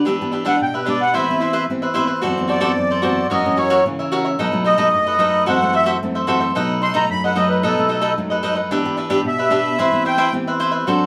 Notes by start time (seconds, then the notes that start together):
0.05 E3 B3 D4 G4 B4 E5
0.21 B3 D4 G4
0.32 D4 G4 B4 E5
0.45 B3 D4 G4 B4 E5 F#5
0.61 B2 G5
0.74 G4 B4 E5
0.86 B3 D4 G4 B4 D5 E5
1.01 F#5
1.14 E3 B3 C4 E4 G4 B4 C5 E5
1.30 B3 C4 G4
1.40 E4 B4 C5 E5
1.53 E4 B4 C5 E5
1.70 E3 B3 C4 G4
1.82 B4 C5 E5
1.94 B3 C4 E4 G4 B4 C5 E5
2.06 B4 C5 E5
2.21 F#2 E3 B3 C4 F#4 A4 C5 D5
2.38 E3 B3 C4
2.48 F#4 A4 C5 D5
2.60 E3 B3 C4 F#4 A4 C5 D5
2.77 F#2
2.91 A4 C5 D5
3.02 E3 B3 C4 F#4 A4 C5 D5
3.30 F#2 E3 A#3 C#4 F#4 A#4 C#5 D#5 E5
3.45 E3 A#3 C#4
3.57 F#4 A#4 C#5 E5
3.70 F#4 A#4 C#5 E5
3.86 C#3 E3 A#3 C#4
3.99 A#4 C#5 E5
4.12 F#4 A#4 C#5 E5
4.25 A#4 C#5 E5
4.39 B2 F#3 A3 D#4 A4 B4 D#5
4.52 F#3 A3 D#4
4.64 D#4 A4 B4 D#5
4.78 F#3 A3 D#4 A4 B4 D#5
4.93 F#2
5.07 A4 B4 D#5
5.19 F#3 A3 D#4 A4 B4 D#5
5.46 F#2 E3 A3 C4 F#4 A4 C5 E5 F#5
5.62 E3 A3 C4
5.73 F#4 A4 C5 E5
5.86 F#4 A4 C5 E5
6.03 F#2 E3 A3 C4
6.15 A4 C5 E5
6.27 E3 A3 C4 F#4 A4 C5 E5
6.40 A4 C5 E5
6.55 B2 F#3 A3 D#4 A4 B4 D#5
6.82 D#4 A4 B4 D#5 C6
6.94 F#3 A3 D#4 A4 B4 D#5 A#5
7.10 F#2 B5
7.24 A4 B4 D#5 F#5
7.35 F#3 A3 D#4 A4 B4 D#5
7.49 B4
7.63 B2 D#4 A4 B4 D#5
7.78 F#3 A3 D#4
7.89 D#4 A4 B4 D#5
8.02 D#4 A4 B4 D#5
8.18 F#2 F#3 A3 D#4
8.30 A4 B4 D#5
8.43 F#3 A3 D#4 A4 B4 D#5
8.55 A4 B4 D#5
8.71 E3 B3 D4 G4 B4 E5
8.85 B3 D4 G4
8.97 D4 G4 B4 E5
9.10 B3 D4 G4 B4 E5
9.25 B2 E5
9.38 G4 B4 E5
9.51 B3 D4 G4 B4 E5
9.78 E3 B3 C4 E4 G4 B4 C5 E5
9.92 B3 C4 G4
10.05 E4 B4 C5 E5 G5
10.18 E4 B4 C5 E5
10.33 E3 B3 C4 G4
10.47 B4 C5 E5
10.60 E4 B4 C5 E5
10.72 B4 C5 E5
10.87 F#3 C4 D4 F#4 A4 C5 D5